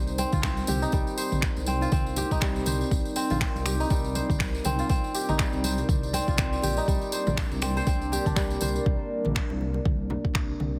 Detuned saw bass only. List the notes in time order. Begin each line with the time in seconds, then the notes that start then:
Already playing: C2
0.33 C2
0.68 C2
0.93 C2
1.32 A#1
1.57 C2
1.92 C2
2.31 C2
2.66 C2
2.91 C2
3.30 A#1
3.55 C2
3.91 C2
4.30 C2
4.65 C2
4.90 C2
5.29 A#1
5.53 C2
5.89 C2
6.28 C2
6.63 A#1
6.88 C2
7.27 A#1
7.52 C2
7.87 C2
8.26 C2
8.61 C2
8.86 C2
9.26 A#1
9.50 C2
9.86 C2
10.25 C2
10.60 C2